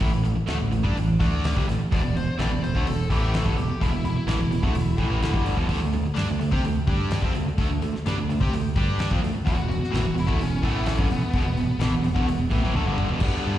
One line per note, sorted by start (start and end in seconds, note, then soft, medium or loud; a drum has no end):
0.00 0.12 A1 loud
0.00 0.12 A2 loud
0.00 0.11 E3 loud
0.00 kick loud
0.00 open hi-hat medium
0.11 0.25 A1 medium
0.11 0.22 A2 medium
0.11 0.23 E3 medium
0.23 0.35 A1 medium
0.23 0.35 A2 medium
0.23 0.37 E3 medium
0.23 open hi-hat soft
0.36 muted overdriven electric guitar stroke medium
0.36 muted picked electric bass stroke soft
0.46 0.58 D2 medium
0.46 0.58 D3 medium
0.46 0.59 A3 loud
0.46 snare loud
0.46 open hi-hat medium
0.58 0.71 A1 medium
0.58 0.70 A2 medium
0.58 0.71 E3 medium
0.71 0.84 A1 medium
0.71 0.84 A2 medium
0.71 0.83 E3 medium
0.71 open hi-hat medium
0.83 0.95 G2 medium
0.83 0.95 G3 medium
0.83 0.96 D4 loud
0.83 kick loud
0.95 1.18 A1 medium
0.95 1.15 A2 medium
0.95 1.15 E3 medium
0.95 open hi-hat medium
1.20 1.53 D2 medium
1.20 1.55 D3 medium
1.20 1.55 A3 loud
1.20 1.56 D4 loud
1.20 kick medium
1.20 open hi-hat soft
1.44 snare loud
1.44 open hi-hat medium
1.55 1.68 C2 loud
1.55 1.67 C3 medium
1.55 1.68 G3 medium
1.55 kick loud
1.68 1.79 A1 medium
1.68 1.78 A2 medium
1.68 1.81 E3 medium
1.68 snare soft
1.68 open hi-hat medium
1.79 muted overdriven electric guitar stroke medium
1.79 muted picked electric bass stroke soft
1.91 2.03 E1 loud
1.91 2.02 E2 loud
1.91 2.02 B2 loud
1.91 2.16 D5 medium
1.91 kick loud
1.91 open hi-hat medium
2.03 2.16 E1 medium
2.03 2.12 E2 medium
2.03 2.13 B2 medium
2.13 2.27 E1 medium
2.13 2.26 E2 medium
2.13 2.26 B2 medium
2.13 2.39 C5 medium
2.13 open hi-hat soft
2.27 muted overdriven electric guitar stroke soft
2.27 muted picked electric bass stroke soft
2.38 2.50 A1 loud
2.38 2.50 A2 loud
2.38 2.50 E3 medium
2.38 2.62 D5 medium
2.38 snare loud
2.38 open hi-hat medium
2.51 2.63 E1 medium
2.51 2.61 E2 medium
2.51 2.62 B2 medium
2.63 2.74 E1 medium
2.63 2.74 E2 medium
2.63 2.74 B2 medium
2.63 2.86 C5 medium
2.63 open hi-hat medium
2.75 2.86 D2 medium
2.75 2.86 D3 medium
2.75 2.86 A3 medium
2.75 kick loud
2.87 3.10 E1 medium
2.87 3.05 E2 medium
2.87 3.06 B2 medium
2.87 3.10 A4 medium
2.87 open hi-hat medium
3.10 3.43 A1 medium
3.10 3.45 A2 medium
3.10 3.45 E3 loud
3.10 3.46 A3 medium
3.10 3.33 G4 medium
3.10 kick medium
3.10 open hi-hat medium
3.34 3.57 A4 medium
3.34 snare loud
3.34 open hi-hat medium
3.45 3.56 G1 medium
3.45 3.57 G2 medium
3.45 3.57 D3 medium
3.45 kick loud
3.58 3.69 E1 medium
3.58 3.70 E2 medium
3.58 3.70 B2 medium
3.58 3.80 G4 medium
3.58 open hi-hat soft
3.70 muted picked electric bass stroke soft
3.70 muted overdriven electric guitar stroke medium
3.81 3.92 E1 medium
3.81 3.92 E2 medium
3.81 3.93 B2 loud
3.81 4.04 E4 medium
3.81 kick loud
3.81 open hi-hat medium
3.93 4.04 E1 medium
3.93 4.04 E2 medium
3.93 4.04 B2 medium
4.04 4.15 E1 medium
4.04 4.16 E2 medium
4.04 4.17 B2 medium
4.04 5.42 E4 medium
4.04 open hi-hat soft
4.17 muted picked electric bass stroke soft
4.17 muted overdriven electric guitar stroke soft
4.27 4.37 A1 medium
4.27 4.39 A2 medium
4.27 4.39 E3 loud
4.27 snare loud
4.27 open hi-hat medium
4.38 4.48 E1 medium
4.38 4.50 E2 medium
4.38 4.51 B2 medium
4.49 4.61 E1 medium
4.49 4.63 E2 medium
4.49 4.62 B2 medium
4.49 open hi-hat soft
4.63 4.74 D2 loud
4.63 4.74 D3 medium
4.63 4.74 A3 medium
4.63 kick medium
4.74 4.97 E1 medium
4.74 4.94 E2 medium
4.74 4.94 B2 medium
4.74 open hi-hat medium
4.98 5.08 A1 medium
4.98 5.09 A2 medium
4.98 5.10 E3 medium
4.98 kick medium
4.98 open hi-hat soft
5.09 5.20 A1 medium
5.09 5.21 A2 medium
5.09 5.22 E3 loud
5.22 5.33 D2 medium
5.22 5.33 D3 medium
5.22 5.34 A3 loud
5.22 snare loud
5.22 open hi-hat medium
5.33 5.56 G1 medium
5.33 5.55 G2 medium
5.33 5.57 D3 medium
5.33 5.57 G3 medium
5.33 kick loud
5.46 open hi-hat medium
5.56 5.68 E1 medium
5.56 5.68 E2 medium
5.56 5.68 B2 medium
5.56 kick medium
5.69 5.80 D2 medium
5.69 5.80 D3 medium
5.69 5.81 A3 loud
5.69 kick medium
5.69 open hi-hat medium
5.81 5.93 D2 medium
5.81 5.93 D3 medium
5.81 5.93 A3 medium
5.93 6.05 D2 medium
5.93 6.05 D3 medium
5.93 6.05 A3 medium
5.93 open hi-hat soft
6.06 muted overdriven electric guitar stroke medium
6.06 muted picked electric bass stroke soft
6.16 6.28 G2 medium
6.16 6.28 G3 medium
6.16 6.28 D4 loud
6.16 snare loud
6.16 open hi-hat medium
6.29 6.40 D2 medium
6.29 6.40 D3 medium
6.29 6.41 A3 medium
6.40 6.51 D2 medium
6.40 6.52 D3 medium
6.40 6.52 A3 medium
6.40 open hi-hat medium
6.52 6.63 C3 medium
6.52 6.63 C4 medium
6.52 6.64 G4 loud
6.52 kick medium
6.65 6.87 D2 medium
6.65 6.83 D3 medium
6.65 6.83 A3 medium
6.65 open hi-hat medium
6.87 7.20 G2 medium
6.87 7.22 G3 loud
6.87 7.23 D4 loud
6.87 7.23 G4 medium
6.87 kick loud
6.87 open hi-hat soft
7.11 snare loud
7.11 open hi-hat medium
7.23 7.33 F2 loud
7.23 7.34 F3 medium
7.23 7.35 C4 medium
7.23 kick loud
7.35 7.46 D2 medium
7.35 7.47 D3 medium
7.35 7.47 A3 medium
7.35 open hi-hat medium
7.47 muted picked electric bass stroke soft
7.47 muted overdriven electric guitar stroke medium
7.58 7.69 D2 medium
7.58 7.70 D3 medium
7.58 7.70 A3 loud
7.58 kick medium
7.58 open hi-hat medium
7.72 7.81 D2 medium
7.72 7.81 D3 medium
7.72 7.81 A3 medium
7.82 7.93 D2 medium
7.82 7.94 D3 medium
7.82 7.94 A3 medium
7.82 open hi-hat medium
7.96 muted overdriven electric guitar stroke medium
7.96 snare soft
8.06 8.16 G2 loud
8.06 8.17 G3 medium
8.06 8.18 D4 loud
8.06 snare loud
8.06 open hi-hat medium
8.18 8.28 D2 medium
8.18 8.29 D3 medium
8.18 8.29 A3 medium
8.28 8.39 D2 medium
8.28 8.41 D3 medium
8.28 8.42 A3 medium
8.28 open hi-hat medium
8.41 8.51 C3 medium
8.41 8.52 C4 medium
8.41 8.53 G4 loud
8.41 kick loud
8.52 8.74 D2 medium
8.52 8.72 D3 medium
8.52 8.72 A3 medium
8.52 open hi-hat medium
8.76 9.08 G2 medium
8.76 9.11 G3 medium
8.76 9.11 D4 medium
8.76 9.11 G4 loud
8.76 kick loud
8.99 snare loud
8.99 open hi-hat medium
9.11 9.22 F2 loud
9.11 9.23 F3 medium
9.11 9.23 C4 medium
9.11 kick loud
9.23 9.33 D2 medium
9.23 9.34 D3 medium
9.23 9.35 A3 medium
9.23 open hi-hat medium
9.33 muted picked electric bass stroke soft
9.33 muted overdriven electric guitar stroke medium
9.46 9.57 E1 medium
9.46 9.57 E2 medium
9.46 9.57 B2 loud
9.46 10.16 F#4 medium
9.46 kick loud
9.46 open hi-hat medium
9.58 9.69 E1 medium
9.58 9.68 E2 medium
9.58 9.69 B2 medium
9.69 9.80 E1 medium
9.69 9.80 E2 medium
9.69 9.81 B2 medium
9.69 open hi-hat soft
9.81 muted picked electric bass stroke soft
9.81 muted overdriven electric guitar stroke medium
9.81 snare soft
9.92 10.03 A1 medium
9.92 10.04 A2 medium
9.92 10.04 E3 loud
9.92 snare loud
9.92 open hi-hat medium
10.04 10.14 E1 medium
10.04 10.14 E2 medium
10.04 10.14 B2 medium
10.15 10.27 E1 medium
10.15 10.28 E2 medium
10.15 10.28 B2 medium
10.15 open hi-hat medium
10.19 10.41 E4 medium
10.28 10.38 D2 medium
10.28 10.39 D3 loud
10.28 10.40 A3 medium
10.28 kick loud
10.38 10.61 E1 medium
10.38 10.59 E2 medium
10.38 10.59 B2 medium
10.38 open hi-hat medium
10.43 10.64 C#4 medium
10.63 10.96 A1 medium
10.63 10.98 A2 medium
10.63 10.98 E3 medium
10.63 10.99 A3 loud
10.63 10.87 B3 medium
10.63 kick loud
10.63 open hi-hat medium
10.86 11.10 C#4 medium
10.86 snare loud
10.86 open hi-hat medium
10.98 11.08 G1 loud
10.98 11.09 G2 medium
10.98 11.09 D3 loud
10.98 kick loud
11.08 11.20 E1 medium
11.08 11.21 E2 medium
11.08 11.22 B2 medium
11.08 open hi-hat medium
11.12 11.34 B3 medium
11.20 muted picked electric bass stroke soft
11.20 muted overdriven electric guitar stroke medium
11.33 11.44 E1 medium
11.33 11.46 E2 medium
11.33 11.47 B2 loud
11.33 12.72 B3 medium
11.33 kick loud
11.33 open hi-hat medium
11.44 11.55 E1 medium
11.44 11.58 E2 medium
11.44 11.58 B2 medium
11.56 11.67 E1 medium
11.56 open hi-hat soft
11.60 11.70 E2 medium
11.60 11.71 B2 medium
11.69 muted picked electric bass stroke soft
11.69 muted overdriven electric guitar stroke soft
11.78 11.90 A1 medium
11.78 snare loud
11.78 open hi-hat medium
11.83 11.93 A2 medium
11.83 11.94 E3 loud
11.90 12.02 E1 medium
11.94 12.04 E2 medium
11.94 12.05 B2 medium
12.03 12.15 E1 medium
12.03 12.17 E2 medium
12.03 12.16 B2 medium
12.03 open hi-hat soft
12.16 12.26 D2 medium
12.16 12.27 D3 medium
12.16 12.28 A3 medium
12.16 kick loud
12.26 12.49 E1 medium
12.26 12.46 E2 medium
12.26 12.46 B2 medium
12.26 open hi-hat medium
12.50 12.61 A1 medium
12.50 12.62 A2 medium
12.50 12.62 E3 loud
12.50 kick loud
12.50 open hi-hat soft
12.62 12.73 A1 medium
12.62 12.75 A2 medium
12.62 12.75 E3 loud
12.74 12.84 D2 medium
12.74 12.86 D3 medium
12.74 12.87 A3 medium
12.74 high tom medium
12.85 13.08 G1 loud
12.85 13.10 G2 medium
12.85 13.10 D3 medium
12.85 13.10 G3 medium
12.98 mid tom medium
13.09 13.20 E1 medium
13.09 13.20 E2 medium
13.09 13.21 B2 loud
13.09 floor tom medium
13.20 13.32 G1 medium
13.20 13.59 G2 medium
13.20 13.59 D3 medium
13.20 13.47 G3 loud
13.20 13.45 B3 loud
13.20 13.45 D4 medium
13.20 13.59 D4 medium
13.20 13.59 G4 medium
13.20 13.43 G4 medium
13.20 13.59 B4 medium
13.20 13.59 D5 medium
13.20 kick loud
13.20 crash loud
13.24 13.59 G5 medium
13.45 13.57 G2 medium
13.45 13.59 G3 medium
13.45 13.59 B3 medium
13.45 13.59 D4 medium
13.45 13.59 G4 medium